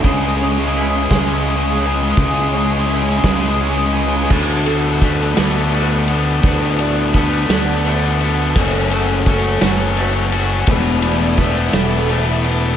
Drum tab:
CC |------|------|x-----|------|
RD |------|------|-xxxxx|xxxxxx|
SD |---o--|---o--|---o--|---o--|
BD |o--o--|o--o--|o-o---|o-o---|

CC |------|------|
RD |xxxxxx|xxxxxx|
SD |---o--|---o--|
BD |o-o---|o-o---|